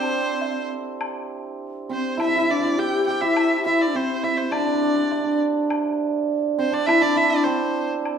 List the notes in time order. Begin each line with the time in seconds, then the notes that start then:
Already playing: C4 D4 E4 G4 A4 C5
0.41 low woodblock
1.01 high woodblock
1.89 C4 C5
2.17 E4, high woodblock
2.22 E5
2.28 E4
2.35 E4
2.41 E4
2.49 D4 E4 D5
2.59 E4
2.64 E4
2.78 G4 G5
3.06 G4 G5
3.16 G4
3.20 E4 E5
3.36 high woodblock
3.60 G4
3.66 E4 E5
3.82 D5
3.88 D4
3.94 C4 C5
4.23 E4 E5
4.37 C4 C5
4.51 D4 D5, high woodblock
4.58 D4
4.67 D4
4.74 D4
4.82 D4
4.89 D4
4.96 D4
5.03 D4
5.11 D4, low woodblock
5.19 D4
5.24 D4
5.70 high woodblock
6.58 C4 C5
6.72 D4 D5
6.87 E4 E5, high woodblock
7.02 D4 D5
7.16 E4 E5
7.30 D4 D5
7.44 C4 C5
8.05 high woodblock